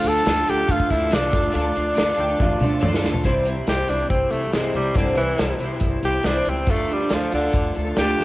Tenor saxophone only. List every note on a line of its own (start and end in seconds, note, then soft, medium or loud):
0.08 0.52 A4 loud
0.50 0.73 G4 loud
0.71 0.92 F4 loud
0.90 1.15 E4 loud
1.14 1.54 D4 loud
1.55 3.00 D4 medium
3.69 3.91 G4 medium
3.89 4.09 D4 medium
4.10 4.32 C4 medium
4.31 4.52 A3 medium
4.54 4.75 G#3 medium
4.76 4.98 G3 medium
4.96 5.17 D3 medium
5.17 5.60 E3 loud
6.05 6.28 G4 loud
6.26 6.51 D4 medium
6.49 6.72 C4 medium
6.70 6.94 A3 medium
6.93 7.16 G3 medium
7.15 7.34 F3 medium
7.34 7.75 D3 loud
7.98 8.24 G4 loud